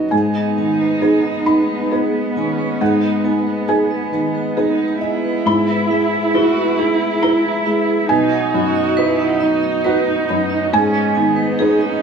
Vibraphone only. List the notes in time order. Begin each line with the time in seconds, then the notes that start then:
0.12 G#4
0.35 D#5
0.58 G#5
0.80 B4
1.02 G#4
1.25 D#5
1.47 B4
1.69 B4
1.92 G#4
2.37 G#5
2.58 B4
2.81 G#4
3.02 D#5
3.25 G#5
3.47 B4
3.69 G#4
3.91 D#5
4.13 B4
4.35 B4
4.57 G#4
5.02 G#5
5.25 B4
5.46 E4
5.69 B4
5.91 E5
6.13 G#4
6.35 E4
6.57 B4
6.79 G#4
7.01 G#4
7.23 E4
7.66 E5
7.88 G#4
8.09 B4
8.32 F#5
8.54 B5
8.75 D#5
8.97 B4
9.19 F#5
9.40 D#5
9.63 D#5
9.84 B4
10.29 B5
10.50 D#5
10.73 G#4
10.94 D#5
11.15 G#5
11.36 B4
11.59 G#4
11.81 D#5